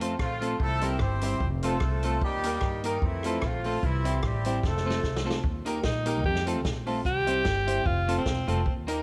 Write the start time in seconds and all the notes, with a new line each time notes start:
Already playing: F2 A3 C4
0.00 A3 C4 F4 A4 C5, closed hi-hat
0.19 A#1 F3 A3 C4 F4, kick, cross-stick
0.40 A3 C4 F4 A4 C5, closed hi-hat
0.60 C2 A3 C4 E4 A4, kick
0.81 G3 A#3 C4 E4 G4 A#4 C5, closed hi-hat
0.99 G1 C4 E4 G4 C5, kick, cross-stick
1.21 G3 C4 E4 G4 C5, closed hi-hat
1.40 F1, kick
1.63 A3 C4 F4 A4 C5, closed hi-hat
1.80 C2 A4 C5, kick, cross-stick
2.03 A3 C4 F4 A4 C5, closed hi-hat
2.22 D#2 G3 A#3 D#4 G4, kick
2.44 A#3 D#4 G4 A#4, closed hi-hat
2.61 G2, kick, cross-stick
2.84 D#3 A#3 D#4 G4 A#4, closed hi-hat
3.02 F2 E3 A3 C4 E4, kick
3.23 A3 C4 F4 A4 C5, cross-stick, closed hi-hat
3.42 A#1 A3 C4, kick, cross-stick
3.46 F3 F4
3.64 A3 C4 F4 A4 C5, open hi-hat
3.83 C2 E3 G3 C4 E4, kick, hi-hat pedal
4.04 G3 C4 E4 G4 C5, closed hi-hat
4.23 A1 G3 C4 E4 G4, kick, cross-stick
4.45 G3 C4 E4 G4 C5, closed hi-hat
4.63 F1 A3 C4 F4 A4, kick, snare
4.77 snare
4.85 A3 C4 F4 A4 C5
4.90 snare
5.03 C2 A4 C5, kick, snare
5.16 snare
5.25 A3 C4 F4 A4 C5
5.30 snare
5.43 D#2, kick
5.65 A#3 D#4 G4 A#4, closed hi-hat
5.83 A#1 D#4, kick, snare
6.05 A#3 D#4 G4 A#4, closed hi-hat
6.24 F2 G4 A4 C5, kick
6.35 snare
6.46 A3 C4 F4 A4 C5, closed hi-hat
6.65 A#1, kick, snare
6.86 A3 C4 F4 A4 C5, open hi-hat
7.05 C2 G4, kick, hi-hat pedal
7.26 G3 C4 E4 G4 C5, closed hi-hat
7.45 G1, kick, snare
7.66 G3 C4 E4 G4 C5, closed hi-hat
7.86 F1 F4 A4 C5, kick
8.07 A3 C4 F4 A4 C5, closed hi-hat
8.18 C4
8.26 E1, kick, snare
8.47 F1 A3 C4 F4 A4 C5, closed hi-hat
8.66 D#2, kick
8.87 A#3 D#4 G4 A#4, closed hi-hat